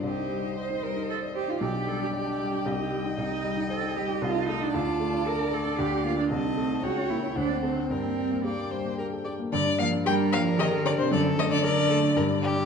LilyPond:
<<
  \new Staff \with { instrumentName = "Violin" } { \time 3/4 \key g \minor \tempo 4 = 114 ees''2. | g''2.~ | g''2 a''4~ | a''2 f''4 |
a''4 g''4 fis''4 | g''4 g''4. r8 | d''8 f''8 g''8 f''8 ees''8 d''16 c''16 | d''8 ees''16 d''16 d''4. r8 | }
  \new Staff \with { instrumentName = "Violin" } { \time 3/4 \key g \minor c''2. | d''2 ees''4~ | ees''2. | d''2. |
ees''4 cis''4 c''4 | bes'4 d''8 c''8 bes'8 d''8 | r4 bes'2 | a'4 bes'8 a'8 bes'8 g'8 | }
  \new Staff \with { instrumentName = "Cello" } { \time 3/4 \key g \minor g'4 c''8 bes'8 a'8 g'16 f'16 | g'8 a'16 g'16 g'4. r8 | ees'4 a'8 g'8 f'8 ees'16 d'16 | f'4 bes'8 a'8 g'8 f'16 d'16 |
c'4 fis'8 e'8 d'8 c'8 | c'4 bes4 r4 | d8 f8 g8 f8 ees8 d16 c16 | d8 ees16 d16 d4. r8 | }
  \new Staff \with { instrumentName = "Grand piano" } { \time 3/4 \key g \minor c,16 ees'16 g16 ees'16 c''16 ees'16 g16 ees'16 c''16 d''16 c''16 ees'16 | b,,16 d'16 g16 d'16 d''16 d'16 g16 d'16 c,16 ees'16 g16 ees'16 | c,16 ees'16 g16 ees'16 c''16 ees'16 g16 ees'16 c,16 ees'16 a16 ees'16 | d,16 d'16 a16 d'16 a'16 d'16 a16 d'16 d,16 d'16 bes16 d'16 |
c,16 ees'16 a16 ees'16 cis,16 cis'16 ais16 cis'16 d,16 c'16 a16 c'16 | g,16 bes16 g16 bes16 g'16 bes16 g16 bes16 g'16 a'16 g'16 bes16 | g,16 d'16 bes16 d'16 g'16 d'16 bes16 d'16 g'16 a'16 g'16 d'16 | fis,16 d'16 a16 d'16 a'16 d'16 a16 d'16 g,16 d'16 g16 d'16 | }
>>